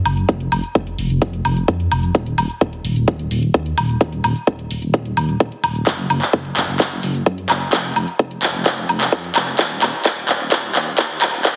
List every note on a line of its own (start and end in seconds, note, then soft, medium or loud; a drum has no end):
0.05 0.24 F#1 loud
0.05 open hi-hat medium
0.05 high woodblock medium
0.05 shaker medium
0.17 closed hi-hat soft
0.17 shaker soft
0.29 0.48 F1 loud
0.29 kick loud
0.29 closed hi-hat medium
0.29 shaker soft
0.40 closed hi-hat soft
0.52 0.61 F1 medium
0.52 open hi-hat loud
0.52 high woodblock medium
0.52 shaker medium
0.64 closed hi-hat soft
0.64 shaker soft
0.75 0.94 F1 medium
0.75 kick loud
0.75 closed hi-hat medium
0.75 shaker soft
0.87 closed hi-hat soft
0.98 1.08 F1 loud
0.98 open hi-hat medium
0.98 shaker medium
1.10 1.20 F1 loud
1.10 closed hi-hat soft
1.10 shaker soft
1.22 1.41 F1 loud
1.22 kick loud
1.22 closed hi-hat medium
1.22 shaker soft
1.33 closed hi-hat soft
1.45 1.64 F1 medium
1.45 open hi-hat loud
1.45 high woodblock medium
1.45 shaker medium
1.57 closed hi-hat soft
1.57 shaker soft
1.68 1.87 F2 medium
1.68 kick loud
1.68 closed hi-hat medium
1.68 shaker soft
1.80 closed hi-hat soft
1.91 2.11 F1 medium
1.91 open hi-hat medium
1.91 high woodblock medium
1.91 shaker medium
2.03 closed hi-hat soft
2.03 shaker soft
2.15 2.34 D#1 loud
2.15 kick loud
2.15 closed hi-hat medium
2.15 shaker soft
2.26 closed hi-hat soft
2.38 2.48 D#1 medium
2.38 open hi-hat loud
2.38 high woodblock medium
2.38 shaker medium
2.50 closed hi-hat soft
2.50 shaker soft
2.61 2.80 D#1 medium
2.61 kick loud
2.61 closed hi-hat medium
2.61 shaker soft
2.73 closed hi-hat soft
2.85 2.94 D#1 loud
2.85 open hi-hat loud
2.85 shaker medium
2.96 3.06 D#1 loud
2.96 closed hi-hat soft
2.96 shaker soft
3.08 3.27 D#1 loud
3.08 kick loud
3.08 closed hi-hat medium
3.08 shaker soft
3.19 closed hi-hat soft
3.31 3.50 D#1 medium
3.31 open hi-hat loud
3.31 shaker medium
3.43 closed hi-hat soft
3.43 shaker soft
3.54 3.73 D#2 medium
3.54 kick loud
3.54 closed hi-hat medium
3.54 shaker soft
3.66 closed hi-hat soft
3.78 3.97 D#1 medium
3.78 open hi-hat medium
3.78 high woodblock medium
3.78 shaker medium
3.89 closed hi-hat soft
3.89 shaker soft
4.01 4.20 D#1 loud
4.01 kick loud
4.01 closed hi-hat medium
4.01 shaker soft
4.12 closed hi-hat soft
4.24 4.34 D#1 medium
4.24 open hi-hat loud
4.24 high woodblock medium
4.24 shaker medium
4.36 closed hi-hat soft
4.36 shaker soft
4.47 4.66 D#1 medium
4.47 kick loud
4.47 closed hi-hat medium
4.47 shaker soft
4.59 closed hi-hat soft
4.71 4.80 D#1 loud
4.71 open hi-hat medium
4.71 shaker medium
4.82 4.92 D#1 loud
4.82 closed hi-hat soft
4.82 shaker soft
4.94 5.13 D#1 medium
4.94 kick loud
4.94 closed hi-hat medium
4.94 shaker soft
5.05 closed hi-hat soft
5.17 5.36 D#1 medium
5.17 open hi-hat loud
5.17 high woodblock medium
5.17 shaker medium
5.29 closed hi-hat soft
5.29 shaker soft
5.40 5.50 D#1 medium
5.40 kick loud
5.40 closed hi-hat medium
5.40 shaker soft
5.52 closed hi-hat soft
5.64 5.83 D#1 loud
5.64 open hi-hat medium
5.64 high woodblock medium
5.64 shaker medium
5.75 closed hi-hat soft
5.75 shaker soft
5.87 6.06 F#1 loud
5.87 kick loud
5.87 clap soft
5.87 closed hi-hat medium
5.87 shaker soft
5.98 closed hi-hat soft
6.10 6.20 F#1 medium
6.10 open hi-hat loud
6.10 high woodblock medium
6.10 shaker medium
6.22 clap soft
6.22 closed hi-hat soft
6.22 shaker soft
6.33 6.52 F#1 medium
6.33 kick loud
6.33 closed hi-hat medium
6.33 shaker soft
6.45 closed hi-hat soft
6.57 6.66 F#1 loud
6.57 clap medium
6.57 open hi-hat medium
6.57 shaker medium
6.68 6.78 F#1 loud
6.68 closed hi-hat soft
6.68 shaker soft
6.80 6.99 F#1 loud
6.80 kick loud
6.80 clap medium
6.80 closed hi-hat medium
6.80 shaker soft
6.92 closed hi-hat soft
7.03 7.22 F#1 medium
7.03 open hi-hat loud
7.03 shaker medium
7.15 closed hi-hat soft
7.15 shaker soft
7.26 7.45 F#2 medium
7.26 kick loud
7.26 closed hi-hat medium
7.26 shaker soft
7.38 closed hi-hat soft
7.50 7.69 F#1 loud
7.50 clap medium
7.50 open hi-hat medium
7.50 high woodblock medium
7.50 shaker medium
7.61 closed hi-hat soft
7.61 shaker soft
7.73 7.92 F1 loud
7.73 kick loud
7.73 clap medium
7.73 closed hi-hat medium
7.73 shaker soft
7.84 closed hi-hat soft
7.96 8.06 F1 medium
7.96 open hi-hat loud
7.96 high woodblock medium
7.96 shaker medium
8.08 closed hi-hat soft
8.08 shaker soft
8.19 8.38 F1 medium
8.19 kick loud
8.19 closed hi-hat medium
8.19 shaker soft
8.31 closed hi-hat soft
8.43 8.52 F1 loud
8.43 clap medium
8.43 open hi-hat medium
8.43 shaker medium
8.54 8.64 F1 loud
8.54 closed hi-hat soft
8.54 shaker soft
8.66 8.85 F1 loud
8.66 kick loud
8.66 clap medium
8.66 closed hi-hat medium
8.66 shaker soft
8.78 closed hi-hat soft
8.89 9.08 F1 medium
8.89 open hi-hat medium
8.89 high woodblock medium
8.89 shaker medium
9.01 clap medium
9.01 closed hi-hat soft
9.01 shaker soft
9.12 9.31 F2 medium
9.12 kick loud
9.12 closed hi-hat medium
9.12 shaker soft
9.24 closed hi-hat soft
9.36 9.55 F1 loud
9.36 clap medium
9.36 open hi-hat medium
9.36 high woodblock medium
9.36 shaker medium
9.47 closed hi-hat soft
9.47 shaker soft
9.59 9.78 D#1 loud
9.59 kick loud
9.59 clap medium
9.59 closed hi-hat medium
9.59 shaker soft
9.71 closed hi-hat soft
9.82 9.92 D#1 medium
9.82 clap medium
9.82 open hi-hat loud
9.82 high woodblock medium
9.82 shaker medium
9.94 closed hi-hat soft
9.94 shaker soft
10.05 10.24 D#1 medium
10.05 kick loud
10.05 clap medium
10.05 closed hi-hat medium
10.05 shaker soft
10.17 closed hi-hat soft
10.29 10.38 D#1 loud
10.29 clap medium
10.29 open hi-hat medium
10.29 shaker medium
10.40 10.50 D#1 loud
10.40 closed hi-hat soft
10.40 shaker soft
10.52 10.71 D#1 loud
10.52 kick loud
10.52 clap medium
10.52 closed hi-hat medium
10.52 shaker soft
10.64 closed hi-hat soft
10.75 10.94 D#1 medium
10.75 clap medium
10.75 open hi-hat medium
10.75 shaker medium
10.87 closed hi-hat soft
10.87 shaker soft
10.98 11.17 D#2 medium
10.98 kick loud
10.98 clap medium
10.98 closed hi-hat medium
10.98 shaker soft
11.10 closed hi-hat soft
11.22 11.41 D#1 loud
11.22 clap medium
11.22 open hi-hat medium
11.22 high woodblock medium
11.22 shaker medium
11.33 closed hi-hat soft
11.33 shaker soft
11.45 11.56 D#1 loud
11.45 kick loud
11.45 clap medium
11.45 closed hi-hat medium
11.45 shaker soft